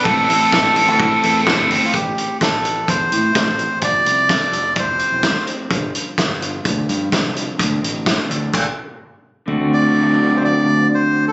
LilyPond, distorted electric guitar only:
\new Staff \with { instrumentName = "Distorted electric guitar" } { \time 4/4 \key a \minor \tempo 4 = 127 <a, e c' e' a'>8 <a, e c' e' a'>8 <a, e c' e' a'>8 <a, e c' e' a'>8 <a, e c' e' a'>8 <a, e c' e' a'>8 <a, e c' e' a'>8 <a, e c' e' a'>8 | r1 | r1 | r1 |
r1 | r1 | }